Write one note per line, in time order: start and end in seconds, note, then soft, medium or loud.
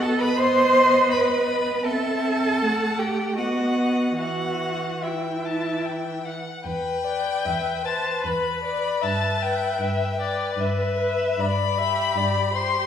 0.00 1.85 B3 medium
0.00 0.22 A4 medium
0.00 1.82 D#5 medium
0.00 0.20 A5 medium
0.21 0.40 B4 medium
0.21 0.41 B5 medium
0.39 1.14 C5 medium
0.39 1.10 C6 medium
1.11 1.87 B4 medium
1.11 1.84 B5 medium
1.85 2.63 C4 medium
1.85 3.00 A4 medium
1.85 2.57 E5 soft
1.85 3.00 A5 medium
2.62 3.39 A3 soft
2.62 3.35 F#5 soft
2.99 3.37 G4 medium
2.99 3.39 G5 soft
3.38 4.18 B3 soft
3.38 4.17 F#4 medium
3.38 4.15 D#5 soft
3.38 4.17 F#5 soft
4.17 6.41 E3 soft
4.17 5.04 F#4 medium
4.17 4.91 E5 soft
4.17 5.04 F#5 soft
5.02 6.26 E4 soft
5.02 6.25 E5 soft
5.02 5.47 G5 soft
5.45 5.87 A5 soft
5.85 6.26 G5 soft
6.25 6.65 F#5 soft
6.64 7.33 E2 soft
6.64 7.06 B4 soft
6.64 7.86 G5 medium
7.04 7.84 B4 soft
7.04 7.47 D5 soft
7.45 8.13 E2 soft
7.45 7.84 E5 soft
7.85 8.62 B4 soft
7.85 8.27 C5 soft
7.85 8.24 A5 medium
8.24 8.91 E2 soft
8.24 8.63 B4 soft
8.24 9.05 B5 medium
8.64 9.02 B4 soft
8.64 9.03 D5 soft
9.02 9.68 G2 soft
9.02 9.40 B4 soft
9.02 9.80 E5 soft
9.02 9.44 A5 medium
9.41 10.17 B4 soft
9.41 9.83 G5 medium
9.79 10.45 G2 soft
9.79 10.19 E5 medium
9.79 10.55 G5 soft
10.18 10.96 B4 soft
10.18 10.61 D5 soft
10.56 11.26 G2 soft
10.56 11.41 B4 soft
10.56 11.41 E5 medium
10.98 11.38 B4 soft
11.38 12.04 G2 medium
11.38 11.80 D5 soft
11.38 12.56 B5 medium
11.78 12.52 G4 soft
11.78 12.18 E5 soft
12.15 12.79 G2 soft
12.15 12.53 D5 soft
12.53 12.87 G4 soft
12.53 12.87 C5 soft
12.53 12.87 C6 medium